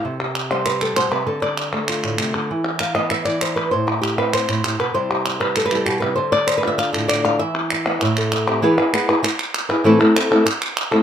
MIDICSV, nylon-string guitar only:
0, 0, Header, 1, 3, 480
1, 0, Start_track
1, 0, Key_signature, 0, "minor"
1, 0, Tempo, 306435
1, 72, Time_signature, 4, 2, 24, 8
1, 17273, End_track
2, 0, Start_track
2, 0, Title_t, "Nylon-string guitar"
2, 0, Program_c, 0, 24
2, 63, Note_on_c, 0, 76, 84
2, 76, Note_on_c, 0, 48, 73
2, 323, Note_on_c, 0, 67, 47
2, 787, Note_off_c, 0, 76, 0
2, 795, Note_on_c, 0, 55, 62
2, 801, Note_on_c, 0, 72, 93
2, 1026, Note_off_c, 0, 67, 0
2, 1032, Note_on_c, 0, 71, 81
2, 1034, Note_off_c, 0, 72, 0
2, 1254, Note_off_c, 0, 55, 0
2, 1271, Note_on_c, 0, 55, 64
2, 1272, Note_off_c, 0, 71, 0
2, 1278, Note_on_c, 0, 69, 84
2, 1499, Note_off_c, 0, 48, 0
2, 1505, Note_on_c, 0, 47, 63
2, 1507, Note_off_c, 0, 69, 0
2, 1513, Note_on_c, 0, 72, 98
2, 1733, Note_off_c, 0, 47, 0
2, 1740, Note_on_c, 0, 48, 66
2, 1748, Note_on_c, 0, 71, 81
2, 1753, Note_off_c, 0, 72, 0
2, 1964, Note_off_c, 0, 55, 0
2, 1982, Note_on_c, 0, 50, 79
2, 1984, Note_on_c, 0, 69, 78
2, 1988, Note_off_c, 0, 48, 0
2, 1988, Note_off_c, 0, 71, 0
2, 2221, Note_off_c, 0, 69, 0
2, 2227, Note_on_c, 0, 74, 105
2, 2470, Note_off_c, 0, 74, 0
2, 2705, Note_on_c, 0, 57, 66
2, 2962, Note_on_c, 0, 65, 49
2, 3191, Note_on_c, 0, 45, 63
2, 3200, Note_on_c, 0, 62, 50
2, 3422, Note_off_c, 0, 45, 0
2, 3429, Note_on_c, 0, 48, 63
2, 3659, Note_off_c, 0, 50, 0
2, 3671, Note_off_c, 0, 48, 0
2, 3678, Note_on_c, 0, 50, 62
2, 3881, Note_off_c, 0, 57, 0
2, 3888, Note_off_c, 0, 62, 0
2, 3889, Note_off_c, 0, 65, 0
2, 3916, Note_off_c, 0, 50, 0
2, 3927, Note_on_c, 0, 52, 77
2, 4391, Note_on_c, 0, 77, 90
2, 4613, Note_off_c, 0, 77, 0
2, 4619, Note_on_c, 0, 75, 108
2, 4649, Note_on_c, 0, 59, 58
2, 4865, Note_off_c, 0, 75, 0
2, 4871, Note_on_c, 0, 76, 105
2, 5087, Note_off_c, 0, 76, 0
2, 5093, Note_on_c, 0, 74, 92
2, 5117, Note_off_c, 0, 52, 0
2, 5124, Note_on_c, 0, 52, 60
2, 5344, Note_off_c, 0, 74, 0
2, 5352, Note_on_c, 0, 72, 91
2, 5571, Note_off_c, 0, 72, 0
2, 5577, Note_on_c, 0, 71, 86
2, 5814, Note_off_c, 0, 59, 0
2, 5815, Note_on_c, 0, 72, 97
2, 5826, Note_off_c, 0, 71, 0
2, 5841, Note_off_c, 0, 52, 0
2, 5848, Note_on_c, 0, 45, 77
2, 6061, Note_on_c, 0, 64, 54
2, 6065, Note_off_c, 0, 72, 0
2, 6283, Note_off_c, 0, 64, 0
2, 6289, Note_on_c, 0, 67, 82
2, 6542, Note_off_c, 0, 67, 0
2, 6548, Note_on_c, 0, 60, 61
2, 6550, Note_on_c, 0, 71, 94
2, 6791, Note_off_c, 0, 71, 0
2, 6792, Note_on_c, 0, 72, 101
2, 7017, Note_off_c, 0, 45, 0
2, 7034, Note_off_c, 0, 72, 0
2, 7035, Note_on_c, 0, 45, 63
2, 7039, Note_on_c, 0, 64, 55
2, 7259, Note_off_c, 0, 45, 0
2, 7275, Note_off_c, 0, 64, 0
2, 7275, Note_on_c, 0, 67, 87
2, 7277, Note_on_c, 0, 45, 64
2, 7499, Note_off_c, 0, 45, 0
2, 7506, Note_on_c, 0, 47, 63
2, 7511, Note_off_c, 0, 67, 0
2, 7518, Note_on_c, 0, 71, 93
2, 7725, Note_off_c, 0, 60, 0
2, 7736, Note_off_c, 0, 47, 0
2, 7742, Note_on_c, 0, 48, 75
2, 7746, Note_on_c, 0, 72, 103
2, 7755, Note_off_c, 0, 71, 0
2, 7755, Note_on_c, 0, 55, 51
2, 7765, Note_on_c, 0, 64, 53
2, 7777, Note_on_c, 0, 67, 50
2, 7984, Note_off_c, 0, 67, 0
2, 8003, Note_on_c, 0, 67, 52
2, 8235, Note_off_c, 0, 67, 0
2, 8254, Note_on_c, 0, 67, 48
2, 8457, Note_off_c, 0, 55, 0
2, 8457, Note_off_c, 0, 67, 0
2, 8464, Note_on_c, 0, 71, 106
2, 8469, Note_off_c, 0, 72, 0
2, 8476, Note_on_c, 0, 55, 64
2, 8710, Note_off_c, 0, 71, 0
2, 8719, Note_on_c, 0, 69, 91
2, 8858, Note_on_c, 0, 71, 119
2, 8878, Note_off_c, 0, 69, 0
2, 8935, Note_off_c, 0, 55, 0
2, 8943, Note_off_c, 0, 64, 0
2, 8954, Note_on_c, 0, 55, 66
2, 8961, Note_on_c, 0, 64, 52
2, 9011, Note_on_c, 0, 69, 86
2, 9028, Note_off_c, 0, 71, 0
2, 9176, Note_on_c, 0, 67, 89
2, 9185, Note_off_c, 0, 69, 0
2, 9187, Note_off_c, 0, 48, 0
2, 9193, Note_on_c, 0, 47, 66
2, 9396, Note_off_c, 0, 67, 0
2, 9402, Note_on_c, 0, 71, 93
2, 9436, Note_off_c, 0, 47, 0
2, 9445, Note_on_c, 0, 48, 68
2, 9636, Note_off_c, 0, 71, 0
2, 9642, Note_on_c, 0, 72, 95
2, 9648, Note_off_c, 0, 55, 0
2, 9651, Note_off_c, 0, 64, 0
2, 9677, Note_on_c, 0, 50, 84
2, 9682, Note_off_c, 0, 48, 0
2, 9901, Note_off_c, 0, 72, 0
2, 9901, Note_on_c, 0, 74, 122
2, 10138, Note_on_c, 0, 72, 88
2, 10150, Note_off_c, 0, 74, 0
2, 10295, Note_off_c, 0, 72, 0
2, 10301, Note_on_c, 0, 71, 101
2, 10404, Note_on_c, 0, 62, 69
2, 10413, Note_on_c, 0, 65, 52
2, 10454, Note_on_c, 0, 76, 96
2, 10470, Note_off_c, 0, 71, 0
2, 10615, Note_off_c, 0, 76, 0
2, 10622, Note_on_c, 0, 77, 107
2, 10845, Note_off_c, 0, 77, 0
2, 10851, Note_on_c, 0, 69, 85
2, 10884, Note_on_c, 0, 45, 73
2, 11090, Note_off_c, 0, 69, 0
2, 11096, Note_on_c, 0, 74, 100
2, 11348, Note_off_c, 0, 74, 0
2, 11356, Note_on_c, 0, 77, 109
2, 11574, Note_off_c, 0, 62, 0
2, 11576, Note_off_c, 0, 77, 0
2, 11578, Note_off_c, 0, 65, 0
2, 11582, Note_on_c, 0, 76, 110
2, 11599, Note_off_c, 0, 50, 0
2, 11602, Note_off_c, 0, 45, 0
2, 11612, Note_on_c, 0, 52, 81
2, 11831, Note_off_c, 0, 76, 0
2, 12098, Note_on_c, 0, 76, 50
2, 12318, Note_on_c, 0, 59, 69
2, 12326, Note_on_c, 0, 64, 52
2, 12530, Note_off_c, 0, 59, 0
2, 12534, Note_off_c, 0, 64, 0
2, 12538, Note_off_c, 0, 52, 0
2, 12541, Note_off_c, 0, 76, 0
2, 12557, Note_on_c, 0, 45, 81
2, 12571, Note_on_c, 0, 76, 71
2, 12813, Note_on_c, 0, 69, 66
2, 13033, Note_off_c, 0, 76, 0
2, 13052, Note_on_c, 0, 76, 65
2, 13270, Note_on_c, 0, 60, 70
2, 13282, Note_on_c, 0, 67, 65
2, 13486, Note_off_c, 0, 60, 0
2, 13492, Note_off_c, 0, 67, 0
2, 13497, Note_off_c, 0, 76, 0
2, 13498, Note_off_c, 0, 69, 0
2, 13506, Note_on_c, 0, 52, 90
2, 13512, Note_on_c, 0, 59, 83
2, 13519, Note_off_c, 0, 45, 0
2, 13519, Note_on_c, 0, 64, 96
2, 13526, Note_on_c, 0, 68, 96
2, 13531, Note_on_c, 0, 71, 88
2, 13729, Note_off_c, 0, 71, 0
2, 13743, Note_off_c, 0, 52, 0
2, 13747, Note_off_c, 0, 59, 0
2, 13748, Note_off_c, 0, 68, 0
2, 13748, Note_on_c, 0, 71, 63
2, 13750, Note_off_c, 0, 64, 0
2, 13766, Note_on_c, 0, 68, 61
2, 13779, Note_on_c, 0, 64, 58
2, 13984, Note_off_c, 0, 71, 0
2, 13986, Note_off_c, 0, 64, 0
2, 13992, Note_on_c, 0, 59, 63
2, 13993, Note_off_c, 0, 68, 0
2, 14005, Note_on_c, 0, 64, 61
2, 14012, Note_on_c, 0, 68, 69
2, 14019, Note_on_c, 0, 71, 66
2, 14213, Note_off_c, 0, 71, 0
2, 14226, Note_off_c, 0, 59, 0
2, 14228, Note_off_c, 0, 68, 0
2, 14232, Note_off_c, 0, 64, 0
2, 14232, Note_on_c, 0, 71, 61
2, 14247, Note_on_c, 0, 68, 55
2, 14260, Note_on_c, 0, 64, 48
2, 14450, Note_off_c, 0, 68, 0
2, 14451, Note_off_c, 0, 64, 0
2, 14459, Note_off_c, 0, 71, 0
2, 15179, Note_on_c, 0, 71, 69
2, 15199, Note_on_c, 0, 68, 63
2, 15209, Note_on_c, 0, 64, 54
2, 15417, Note_on_c, 0, 45, 82
2, 15419, Note_off_c, 0, 71, 0
2, 15422, Note_on_c, 0, 52, 87
2, 15425, Note_off_c, 0, 64, 0
2, 15429, Note_off_c, 0, 68, 0
2, 15431, Note_on_c, 0, 57, 91
2, 15436, Note_on_c, 0, 60, 91
2, 15443, Note_on_c, 0, 64, 96
2, 15453, Note_on_c, 0, 69, 108
2, 15639, Note_off_c, 0, 69, 0
2, 15656, Note_off_c, 0, 64, 0
2, 15658, Note_off_c, 0, 45, 0
2, 15658, Note_on_c, 0, 69, 65
2, 15660, Note_off_c, 0, 52, 0
2, 15664, Note_off_c, 0, 57, 0
2, 15667, Note_off_c, 0, 60, 0
2, 15675, Note_on_c, 0, 64, 64
2, 15685, Note_on_c, 0, 60, 61
2, 15690, Note_on_c, 0, 57, 55
2, 15884, Note_off_c, 0, 57, 0
2, 15893, Note_off_c, 0, 60, 0
2, 15898, Note_off_c, 0, 69, 0
2, 15903, Note_on_c, 0, 57, 61
2, 15906, Note_off_c, 0, 64, 0
2, 15912, Note_on_c, 0, 60, 67
2, 15927, Note_on_c, 0, 64, 65
2, 15938, Note_on_c, 0, 69, 73
2, 16131, Note_off_c, 0, 69, 0
2, 16140, Note_off_c, 0, 57, 0
2, 16142, Note_off_c, 0, 64, 0
2, 16145, Note_off_c, 0, 60, 0
2, 16150, Note_on_c, 0, 69, 64
2, 16161, Note_on_c, 0, 64, 64
2, 16172, Note_on_c, 0, 60, 62
2, 16182, Note_on_c, 0, 57, 54
2, 16362, Note_off_c, 0, 57, 0
2, 16368, Note_off_c, 0, 60, 0
2, 16373, Note_off_c, 0, 64, 0
2, 16378, Note_off_c, 0, 69, 0
2, 17095, Note_on_c, 0, 69, 70
2, 17106, Note_on_c, 0, 64, 64
2, 17118, Note_on_c, 0, 60, 58
2, 17131, Note_on_c, 0, 57, 57
2, 17273, Note_off_c, 0, 57, 0
2, 17273, Note_off_c, 0, 60, 0
2, 17273, Note_off_c, 0, 64, 0
2, 17273, Note_off_c, 0, 69, 0
2, 17273, End_track
3, 0, Start_track
3, 0, Title_t, "Muted nylon-string guitar strokes"
3, 14454, Note_on_c, 9, 29, 77
3, 14611, Note_off_c, 9, 29, 0
3, 16379, Note_on_c, 9, 29, 72
3, 16536, Note_off_c, 9, 29, 0
3, 17273, End_track
0, 0, End_of_file